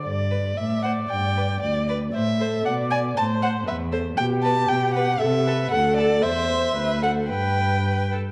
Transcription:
<<
  \new Staff \with { instrumentName = "Violin" } { \time 2/4 \key g \major \tempo 4 = 116 d''4 e''8 fis''8 | g''4 d''8 d''8 | e''4 fis''8 gis''8 | a''8 fis''8 e''8 r8 |
g''8 a''8 g''8 fis''8 | e''4 fis''8 d''8 | e''4. fis''8 | g''4. r8 | }
  \new Staff \with { instrumentName = "Viola" } { \time 2/4 \key g \major r4 d''4~ | d''2 | c''8 a'8 d''4 | c''4 b'8 a'8 |
g'2 | a'8 b'8 a'4 | c''4 b'8 a'8 | b'4. r8 | }
  \new Staff \with { instrumentName = "Violin" } { \time 2/4 \key g \major r8 b'16 r8. c''16 r16 | r8 b'16 r8. b'16 r16 | r8 c''16 r8. d''16 r16 | r8 c''16 r8. c''16 r16 |
r8 b'16 r8. b'16 r16 | r8 a'16 r8. a'16 r16 | c''4 c''4 | b'4 b'8 a'8 | }
  \new Staff \with { instrumentName = "Cello" } { \clef bass \time 2/4 \key g \major g,4 a,4 | g,4 d,4 | a,4 b,4 | a,4 e,4 |
b,4 b,4 | c4 d,4 | e,4 d,4 | g,4. r8 | }
>>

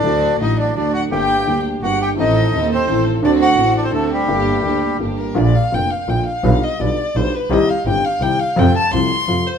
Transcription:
<<
  \new Staff \with { instrumentName = "Violin" } { \time 3/4 \key g \minor \tempo 4 = 169 d''4 ees''8 d''8 d''8 fis''8 | g''4. r8 fis''8 g''8 | ees''4. c''4 r8 | d''8 fis''4 d''16 c''16 a'8 g'8~ |
g'2 r8 bes'8 | \key bes \major d''8 f''8 g''8 f''8 g''8 f''8~ | f''8 ees''8 d''4 c''8 b'8 | ees''8 f''8 g''8 f''8 g''8 f''8 |
g''8 a''8 c'''4. c''8 | }
  \new Staff \with { instrumentName = "Bandoneon" } { \time 3/4 \key g \minor <d' d''>4 <ees' ees''>8 <d' d''>8 <d' d''>8 <fis' fis''>8 | <g' g''>4. r8 <fis' fis''>8 <g' g''>8 | <ees' ees''>4. <c' c''>4 r8 | <d' d''>8 <fis' fis''>4 <d' d''>16 <c' c''>16 <a a'>8 <g g'>8~ |
<g g'>2 r4 | \key bes \major r2. | r2. | r2. |
r2. | }
  \new Staff \with { instrumentName = "String section" } { \time 3/4 \key g \minor <a d' fis'>4 <a d' fis'>4 <a d' fis'>4 | <bes d' g'>4 <bes d' g'>4 <bes d' g'>4 | <c' ees' a'>4 <c' ees' a'>4 <c' ees' a'>4 | <c' d' fis'>4 <c' d' fis'>4 <c' d' fis'>4 |
<bes d' g'>4 <bes d' g'>4 <bes d' g'>4 | \key bes \major r2. | r2. | r2. |
r2. | }
  \new Staff \with { instrumentName = "Upright piano" } { \clef bass \time 3/4 \key g \minor <d, d fis a fis'>4 <a,, a, d fis a fis'>4 <d, d fis a fis'>4 | <g,, g, d g bes g'>4 <d, d g bes g'>4 <g,, g, d g bes>4 | <a,, a, ees a c' a'>4 <ees,, ees, ees a c' a'>4 <a,, a, ees a c' a'>4 | <d, d a c' fis'>4 <a,, a, d a c' fis'>4 <d, d a c' fis'>4 |
<g,, g, d g bes g'>4 <d, d g bes g'>4 <g,, g, d g bes g'>4 | \key bes \major <bes,, bes, d f bes f'>8 r8 <f,, f, d f bes f'>8 r8 <bes,, bes, d f bes f'>8 r8 | <b,, b, d g b f'>8 r8 <b,, b, d g b f'>8 r8 <b,, b, d g b f'>8 r8 | <c, c ees g c' g'>8 r8 <g,, g, ees g c' g'>8 r8 <c, c ees g c' g'>8 r8 |
<f, c f a f'>8 r8 <c, c f a f'>8 r8 <f, c f a f'>8 r8 | }
  \new Staff \with { instrumentName = "Double bass" } { \clef bass \time 3/4 \key g \minor d,4 a,,4 d,4 | g,,4 d,4 g,,4 | a,,4 ees,4 a,,4 | d,4 a,,4 d,4 |
g,,4 d,4 g,,4 | \key bes \major bes,,8 r8 f,,8 r8 bes,,8 r8 | b,,8 r8 b,,8 r8 b,,8 r8 | c,8 r8 g,,8 r8 c,8 r8 |
f,8 r8 c,8 r8 f,8 r8 | }
>>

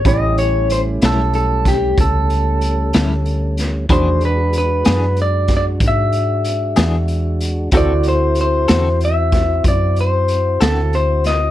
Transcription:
<<
  \new Staff \with { instrumentName = "Clean electric guitar" } { \time 12/8 \key e \dorian \tempo 4. = 63 dis''8 cis''8 c''8 a'8 a'8 g'8 a'2~ a'8 r8 | c''8 b'8 b'4 d''8 d''8 e''2~ e''8 r8 | d''8 c''8 c''4 e''4 d''8 c''4 a'8 c''8 dis''8 | }
  \new Staff \with { instrumentName = "Upright piano" } { \time 12/8 \key e \dorian <cis' e' g' b''>1. | <d' fis' gis' b''>1. | <e' fis' a' c''>1. | }
  \new Staff \with { instrumentName = "Clean electric guitar" } { \time 12/8 \key e \dorian r4. <a, g cis' e'>8 r2 r8 <a, g cis' e'>8 r4 | <e b d' gis'>8 r4 <e b d' gis'>8 r2 r8 <e b d' gis'>8 r4 | <d c' fis' a'>8 r4 <d c' fis' a'>8 r2 r8 <d c' fis' a'>8 r4 | }
  \new Staff \with { instrumentName = "Tonewheel organ" } { \time 12/8 \key e \dorian <g a cis'>1. | <dis a gis'>8 <gis d' fis'>1~ <gis d' fis'>4. | <c' e' fis'>1. | }
  \new Staff \with { instrumentName = "Fingered electric bass" } { \clef bass \time 12/8 \key e \dorian a,,4. b,,4. cis,4. d,4. | e,4. fis,4. gis,4. e,4. | d,4. e,4. fis,4. d,4. | }
  \new DrumStaff \with { instrumentName = "Drums" } \drummode { \time 12/8 <hh bd>8 hh8 hh8 <hh sn>8 hh8 <hh bd sn>8 <hh bd>8 hh8 hh8 <hh sn>8 hh8 <hh sn>8 | <hh bd>8 hh8 hh8 <hh sn>8 hh8 <hh bd sn>8 <hh bd>8 hh8 hh8 <hh sn>8 hh8 hh8 | <hh bd>8 hh8 hh8 <hh sn>8 hh8 <hh bd sn>8 <hh bd>8 hh8 hh8 <hh sn>8 hh8 <hh sn>8 | }
>>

